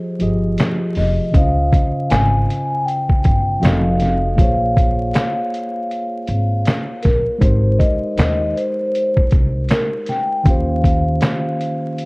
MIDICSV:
0, 0, Header, 1, 5, 480
1, 0, Start_track
1, 0, Tempo, 759494
1, 850, Time_signature, 4, 2, 24, 8
1, 7617, End_track
2, 0, Start_track
2, 0, Title_t, "Vibraphone"
2, 0, Program_c, 0, 11
2, 616, Note_on_c, 0, 75, 89
2, 855, Note_on_c, 0, 77, 93
2, 860, Note_off_c, 0, 75, 0
2, 1331, Note_on_c, 0, 80, 103
2, 1347, Note_off_c, 0, 77, 0
2, 1785, Note_off_c, 0, 80, 0
2, 1801, Note_on_c, 0, 79, 102
2, 2282, Note_on_c, 0, 77, 86
2, 2300, Note_off_c, 0, 79, 0
2, 2744, Note_off_c, 0, 77, 0
2, 2752, Note_on_c, 0, 77, 91
2, 4416, Note_off_c, 0, 77, 0
2, 4440, Note_on_c, 0, 70, 83
2, 4680, Note_on_c, 0, 72, 83
2, 4693, Note_off_c, 0, 70, 0
2, 4923, Note_on_c, 0, 75, 98
2, 4932, Note_off_c, 0, 72, 0
2, 5410, Note_on_c, 0, 72, 81
2, 5421, Note_off_c, 0, 75, 0
2, 5865, Note_off_c, 0, 72, 0
2, 6134, Note_on_c, 0, 70, 87
2, 6355, Note_off_c, 0, 70, 0
2, 6378, Note_on_c, 0, 79, 104
2, 6617, Note_on_c, 0, 77, 82
2, 6621, Note_off_c, 0, 79, 0
2, 7617, Note_off_c, 0, 77, 0
2, 7617, End_track
3, 0, Start_track
3, 0, Title_t, "Tine electric piano"
3, 0, Program_c, 1, 4
3, 0, Control_c, 1, 64, 127
3, 0, Note_on_c, 1, 53, 73
3, 0, Note_on_c, 1, 65, 59
3, 0, Note_on_c, 1, 67, 64
3, 0, Note_on_c, 1, 68, 72
3, 0, Note_on_c, 1, 75, 74
3, 97, Note_off_c, 1, 53, 0
3, 102, Note_off_c, 1, 65, 0
3, 107, Note_off_c, 1, 67, 0
3, 113, Note_off_c, 1, 68, 0
3, 119, Note_on_c, 1, 53, 57
3, 120, Note_off_c, 1, 75, 0
3, 125, Note_on_c, 1, 65, 45
3, 131, Note_on_c, 1, 67, 52
3, 137, Note_on_c, 1, 68, 51
3, 141, Note_on_c, 1, 75, 56
3, 830, Note_on_c, 1, 49, 63
3, 842, Note_on_c, 1, 61, 55
3, 845, Note_off_c, 1, 53, 0
3, 848, Note_off_c, 1, 65, 0
3, 851, Note_off_c, 1, 67, 0
3, 851, Note_on_c, 1, 64, 45
3, 854, Note_off_c, 1, 68, 0
3, 855, Note_off_c, 1, 75, 0
3, 857, Control_c, 1, 64, 0
3, 862, Note_on_c, 1, 72, 61
3, 874, Note_on_c, 1, 75, 70
3, 895, Note_on_c, 1, 65, 60
3, 900, Note_off_c, 1, 64, 0
3, 982, Control_c, 1, 64, 127
3, 2255, Note_off_c, 1, 49, 0
3, 2261, Note_off_c, 1, 61, 0
3, 2271, Note_off_c, 1, 72, 0
3, 2274, Note_on_c, 1, 53, 58
3, 2277, Note_off_c, 1, 75, 0
3, 2280, Note_on_c, 1, 60, 57
3, 2284, Note_on_c, 1, 66, 60
3, 2287, Note_off_c, 1, 65, 0
3, 2292, Note_on_c, 1, 69, 60
3, 2295, Note_on_c, 1, 75, 78
3, 2299, Control_c, 1, 64, 0
3, 2391, Control_c, 1, 64, 127
3, 2754, Note_on_c, 1, 58, 70
3, 2762, Note_off_c, 1, 53, 0
3, 2765, Note_off_c, 1, 60, 0
3, 2765, Note_on_c, 1, 65, 67
3, 2767, Note_off_c, 1, 66, 0
3, 2771, Note_off_c, 1, 69, 0
3, 2773, Note_off_c, 1, 75, 0
3, 2776, Note_on_c, 1, 68, 61
3, 2778, Control_c, 1, 64, 0
3, 2786, Note_on_c, 1, 72, 64
3, 2795, Note_on_c, 1, 73, 78
3, 2902, Control_c, 1, 64, 127
3, 4657, Note_off_c, 1, 58, 0
3, 4662, Note_off_c, 1, 65, 0
3, 4668, Note_off_c, 1, 68, 0
3, 4668, Note_on_c, 1, 56, 75
3, 4673, Note_off_c, 1, 72, 0
3, 4678, Note_off_c, 1, 73, 0
3, 4679, Note_on_c, 1, 63, 66
3, 4690, Note_on_c, 1, 67, 63
3, 4698, Control_c, 1, 64, 0
3, 4700, Note_on_c, 1, 70, 66
3, 4711, Note_on_c, 1, 72, 82
3, 4792, Control_c, 1, 64, 127
3, 6574, Note_off_c, 1, 56, 0
3, 6579, Note_off_c, 1, 63, 0
3, 6585, Note_off_c, 1, 67, 0
3, 6590, Note_off_c, 1, 70, 0
3, 6595, Note_off_c, 1, 72, 0
3, 6595, Note_on_c, 1, 51, 72
3, 6603, Note_on_c, 1, 58, 65
3, 6612, Note_on_c, 1, 61, 67
3, 6619, Control_c, 1, 64, 0
3, 6620, Note_on_c, 1, 65, 56
3, 6628, Note_on_c, 1, 67, 66
3, 6637, Note_on_c, 1, 72, 84
3, 6724, Control_c, 1, 64, 127
3, 7617, Note_off_c, 1, 51, 0
3, 7617, Note_off_c, 1, 58, 0
3, 7617, Note_off_c, 1, 61, 0
3, 7617, Note_off_c, 1, 65, 0
3, 7617, Note_off_c, 1, 67, 0
3, 7617, Note_off_c, 1, 72, 0
3, 7617, End_track
4, 0, Start_track
4, 0, Title_t, "Upright bass"
4, 0, Program_c, 2, 32
4, 133, Note_on_c, 2, 31, 75
4, 349, Note_off_c, 2, 31, 0
4, 612, Note_on_c, 2, 29, 85
4, 741, Note_off_c, 2, 29, 0
4, 849, Note_on_c, 2, 37, 107
4, 1066, Note_off_c, 2, 37, 0
4, 1335, Note_on_c, 2, 32, 96
4, 1550, Note_off_c, 2, 32, 0
4, 2055, Note_on_c, 2, 31, 85
4, 2270, Note_off_c, 2, 31, 0
4, 2293, Note_on_c, 2, 29, 87
4, 2746, Note_off_c, 2, 29, 0
4, 2771, Note_on_c, 2, 34, 96
4, 3225, Note_off_c, 2, 34, 0
4, 3971, Note_on_c, 2, 32, 82
4, 4188, Note_off_c, 2, 32, 0
4, 4458, Note_on_c, 2, 34, 91
4, 4584, Note_off_c, 2, 34, 0
4, 4689, Note_on_c, 2, 32, 105
4, 4907, Note_off_c, 2, 32, 0
4, 5167, Note_on_c, 2, 39, 89
4, 5386, Note_off_c, 2, 39, 0
4, 5895, Note_on_c, 2, 36, 73
4, 6110, Note_off_c, 2, 36, 0
4, 6609, Note_on_c, 2, 39, 99
4, 7064, Note_off_c, 2, 39, 0
4, 7617, End_track
5, 0, Start_track
5, 0, Title_t, "Drums"
5, 125, Note_on_c, 9, 42, 62
5, 188, Note_off_c, 9, 42, 0
5, 366, Note_on_c, 9, 42, 89
5, 381, Note_on_c, 9, 38, 121
5, 381, Note_on_c, 9, 39, 93
5, 429, Note_off_c, 9, 42, 0
5, 444, Note_off_c, 9, 38, 0
5, 444, Note_off_c, 9, 39, 0
5, 601, Note_on_c, 9, 46, 50
5, 617, Note_on_c, 9, 38, 37
5, 665, Note_off_c, 9, 46, 0
5, 680, Note_off_c, 9, 38, 0
5, 847, Note_on_c, 9, 36, 116
5, 849, Note_on_c, 9, 42, 86
5, 910, Note_off_c, 9, 36, 0
5, 913, Note_off_c, 9, 42, 0
5, 1091, Note_on_c, 9, 36, 98
5, 1098, Note_on_c, 9, 42, 68
5, 1154, Note_off_c, 9, 36, 0
5, 1162, Note_off_c, 9, 42, 0
5, 1330, Note_on_c, 9, 42, 87
5, 1341, Note_on_c, 9, 38, 122
5, 1341, Note_on_c, 9, 39, 97
5, 1393, Note_off_c, 9, 42, 0
5, 1404, Note_off_c, 9, 39, 0
5, 1405, Note_off_c, 9, 38, 0
5, 1583, Note_on_c, 9, 42, 69
5, 1646, Note_off_c, 9, 42, 0
5, 1822, Note_on_c, 9, 42, 63
5, 1885, Note_off_c, 9, 42, 0
5, 1955, Note_on_c, 9, 36, 89
5, 2019, Note_off_c, 9, 36, 0
5, 2048, Note_on_c, 9, 42, 58
5, 2054, Note_on_c, 9, 36, 100
5, 2112, Note_off_c, 9, 42, 0
5, 2118, Note_off_c, 9, 36, 0
5, 2293, Note_on_c, 9, 42, 84
5, 2308, Note_on_c, 9, 38, 116
5, 2308, Note_on_c, 9, 39, 91
5, 2356, Note_off_c, 9, 42, 0
5, 2371, Note_off_c, 9, 38, 0
5, 2371, Note_off_c, 9, 39, 0
5, 2527, Note_on_c, 9, 42, 73
5, 2543, Note_on_c, 9, 38, 39
5, 2590, Note_off_c, 9, 42, 0
5, 2606, Note_off_c, 9, 38, 0
5, 2769, Note_on_c, 9, 36, 113
5, 2775, Note_on_c, 9, 42, 90
5, 2832, Note_off_c, 9, 36, 0
5, 2838, Note_off_c, 9, 42, 0
5, 3012, Note_on_c, 9, 36, 92
5, 3020, Note_on_c, 9, 42, 61
5, 3075, Note_off_c, 9, 36, 0
5, 3083, Note_off_c, 9, 42, 0
5, 3248, Note_on_c, 9, 42, 88
5, 3259, Note_on_c, 9, 39, 103
5, 3260, Note_on_c, 9, 38, 127
5, 3311, Note_off_c, 9, 42, 0
5, 3322, Note_off_c, 9, 39, 0
5, 3323, Note_off_c, 9, 38, 0
5, 3502, Note_on_c, 9, 42, 70
5, 3565, Note_off_c, 9, 42, 0
5, 3736, Note_on_c, 9, 42, 64
5, 3800, Note_off_c, 9, 42, 0
5, 3965, Note_on_c, 9, 42, 64
5, 4028, Note_off_c, 9, 42, 0
5, 4204, Note_on_c, 9, 42, 84
5, 4219, Note_on_c, 9, 38, 124
5, 4219, Note_on_c, 9, 39, 90
5, 4267, Note_off_c, 9, 42, 0
5, 4282, Note_off_c, 9, 38, 0
5, 4282, Note_off_c, 9, 39, 0
5, 4439, Note_on_c, 9, 42, 73
5, 4455, Note_on_c, 9, 36, 104
5, 4455, Note_on_c, 9, 38, 34
5, 4502, Note_off_c, 9, 42, 0
5, 4518, Note_off_c, 9, 36, 0
5, 4518, Note_off_c, 9, 38, 0
5, 4687, Note_on_c, 9, 36, 123
5, 4689, Note_on_c, 9, 42, 93
5, 4750, Note_off_c, 9, 36, 0
5, 4752, Note_off_c, 9, 42, 0
5, 4930, Note_on_c, 9, 36, 98
5, 4937, Note_on_c, 9, 42, 70
5, 4993, Note_off_c, 9, 36, 0
5, 5000, Note_off_c, 9, 42, 0
5, 5168, Note_on_c, 9, 42, 89
5, 5179, Note_on_c, 9, 38, 126
5, 5179, Note_on_c, 9, 39, 95
5, 5231, Note_off_c, 9, 42, 0
5, 5242, Note_off_c, 9, 39, 0
5, 5243, Note_off_c, 9, 38, 0
5, 5419, Note_on_c, 9, 42, 66
5, 5482, Note_off_c, 9, 42, 0
5, 5656, Note_on_c, 9, 42, 66
5, 5719, Note_off_c, 9, 42, 0
5, 5795, Note_on_c, 9, 36, 85
5, 5858, Note_off_c, 9, 36, 0
5, 5884, Note_on_c, 9, 42, 56
5, 5893, Note_on_c, 9, 36, 110
5, 5947, Note_off_c, 9, 42, 0
5, 5956, Note_off_c, 9, 36, 0
5, 6123, Note_on_c, 9, 42, 83
5, 6138, Note_on_c, 9, 38, 121
5, 6138, Note_on_c, 9, 39, 97
5, 6186, Note_off_c, 9, 42, 0
5, 6201, Note_off_c, 9, 38, 0
5, 6201, Note_off_c, 9, 39, 0
5, 6360, Note_on_c, 9, 42, 77
5, 6376, Note_on_c, 9, 38, 36
5, 6423, Note_off_c, 9, 42, 0
5, 6439, Note_off_c, 9, 38, 0
5, 6607, Note_on_c, 9, 36, 115
5, 6608, Note_on_c, 9, 42, 91
5, 6671, Note_off_c, 9, 36, 0
5, 6671, Note_off_c, 9, 42, 0
5, 6851, Note_on_c, 9, 36, 94
5, 6859, Note_on_c, 9, 42, 67
5, 6914, Note_off_c, 9, 36, 0
5, 6923, Note_off_c, 9, 42, 0
5, 7084, Note_on_c, 9, 42, 83
5, 7095, Note_on_c, 9, 38, 118
5, 7095, Note_on_c, 9, 39, 100
5, 7147, Note_off_c, 9, 42, 0
5, 7158, Note_off_c, 9, 39, 0
5, 7159, Note_off_c, 9, 38, 0
5, 7336, Note_on_c, 9, 42, 64
5, 7399, Note_off_c, 9, 42, 0
5, 7572, Note_on_c, 9, 42, 70
5, 7617, Note_off_c, 9, 42, 0
5, 7617, End_track
0, 0, End_of_file